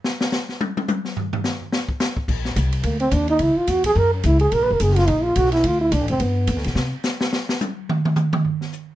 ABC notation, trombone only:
X:1
M:4/4
L:1/8
Q:"Swing" 1/4=214
K:Gm
V:1 name="Trombone"
z8 | z8 | z4 B, C D E | _F =F _G _A B _D =E A |
(3B =B _B _A F E F ^F =E | F =E D C =B,3 z | z8 | z8 |]